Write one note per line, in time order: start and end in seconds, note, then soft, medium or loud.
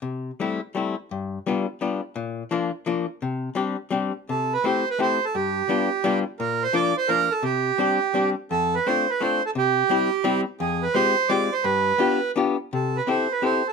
0.02 0.30 C3 soft
0.40 0.59 G3 soft
0.40 0.59 A3 soft
0.40 0.59 C4 soft
0.40 0.60 E4 medium
0.75 0.94 G3 soft
0.75 0.94 A3 soft
0.75 0.95 C4 soft
0.75 0.95 E4 soft
1.11 1.38 G2 soft
1.47 1.65 G3 medium
1.47 1.65 B3 soft
1.47 1.65 D4 soft
1.47 1.66 F4 soft
1.81 2.00 G3 soft
1.81 2.00 B3 soft
1.81 2.00 D4 soft
1.81 2.00 F4 soft
2.16 2.42 A#2 medium
2.51 2.70 F3 medium
2.51 2.70 A#3 soft
2.51 2.70 D4 soft
2.51 2.71 F4 medium
2.86 3.05 F3 medium
2.86 3.05 A#3 medium
2.86 3.05 D4 soft
2.86 3.06 F4 medium
3.22 3.49 C3 medium
3.55 3.75 G3 medium
3.55 3.75 C4 soft
3.55 3.76 D4 soft
3.55 3.76 G4 medium
3.90 4.11 G3 medium
3.90 4.12 C4 soft
3.90 4.12 D4 soft
3.90 4.12 G4 medium
4.29 4.56 C3 soft
4.29 4.54 A4 medium
4.53 4.65 B4 medium
4.64 4.83 A3 soft
4.64 4.84 C4 soft
4.64 4.84 E4 soft
4.64 4.84 G4 medium
4.64 4.89 C5 medium
4.90 5.00 B4 medium
4.99 5.18 A3 soft
4.99 5.19 C4 soft
4.99 5.19 E4 soft
4.99 5.19 G4 medium
4.99 5.25 C5 medium
5.25 5.36 A4 medium
5.35 5.61 G2 medium
5.35 6.19 G4 medium
5.69 5.88 G3 medium
5.69 5.88 B3 soft
5.69 5.89 D4 medium
5.69 5.89 F4 medium
6.04 6.23 G3 medium
6.04 6.23 B3 soft
6.04 6.23 D4 medium
6.04 6.24 F4 medium
6.39 6.66 A#2 medium
6.39 6.63 A#4 medium
6.63 6.75 C5 medium
6.73 6.93 F3 medium
6.73 6.93 A#3 soft
6.73 6.93 D4 soft
6.73 6.93 F4 medium
6.73 6.96 D5 medium
6.97 7.10 C5 medium
7.08 7.28 F3 soft
7.08 7.28 A#3 soft
7.08 7.28 D4 soft
7.08 7.29 F4 soft
7.08 7.33 A#4 medium
7.31 7.44 A4 medium
7.43 7.70 C3 medium
7.43 8.30 G4 medium
7.78 7.98 G3 soft
7.78 7.98 C4 soft
7.78 7.99 D4 soft
7.78 7.99 G4 medium
8.14 8.34 G3 medium
8.14 8.34 C4 soft
8.14 8.34 D4 soft
8.14 8.35 G4 medium
8.51 8.78 F2 medium
8.51 8.75 A4 medium
8.75 8.87 B4 medium
8.86 9.06 A3 medium
8.86 9.05 C4 soft
8.86 9.06 D4 soft
8.86 9.06 F4 medium
8.86 9.10 C5 medium
9.10 9.22 B4 medium
9.21 9.40 A3 soft
9.21 9.40 C4 soft
9.21 9.40 D4 soft
9.21 9.41 F4 medium
9.21 9.43 C5 medium
9.46 9.51 A4 medium
9.55 9.82 C3 medium
9.55 10.41 G4 medium
9.89 10.09 G3 medium
9.89 10.09 C4 soft
9.89 10.09 E4 soft
9.89 10.10 G4 medium
10.24 10.44 G3 medium
10.24 10.44 C4 medium
10.24 10.44 E4 medium
10.24 10.44 G4 medium
10.60 10.87 F2 medium
10.60 10.84 G#4 medium
10.83 10.95 B4 medium
10.94 11.14 G#3 medium
10.94 11.14 C4 soft
10.94 11.14 F4 soft
10.94 11.14 G4 medium
10.94 11.31 C5 medium
11.29 11.49 G#3 medium
11.29 11.49 C4 medium
11.29 11.49 F4 soft
11.29 11.50 G4 medium
11.29 11.54 D5 medium
11.52 11.65 C5 medium
11.64 11.92 G2 medium
11.64 12.32 B4 medium
11.98 12.19 B3 medium
11.98 12.19 D4 soft
11.98 12.19 F4 soft
11.98 12.20 G4 medium
12.36 12.55 B3 soft
12.36 12.56 D4 soft
12.36 12.56 F4 soft
12.36 12.56 G4 medium
12.73 12.99 C3 medium
12.73 12.97 A4 medium
12.97 13.08 B4 medium
13.07 13.26 C4 soft
13.07 13.27 E4 soft
13.07 13.27 G4 soft
13.07 13.27 A4 medium
13.07 13.33 C5 medium
13.32 13.43 B4 medium
13.42 13.61 C4 soft
13.42 13.62 E4 soft
13.42 13.62 G4 soft
13.42 13.62 A4 soft
13.42 13.68 C5 medium
13.67 13.73 A4 medium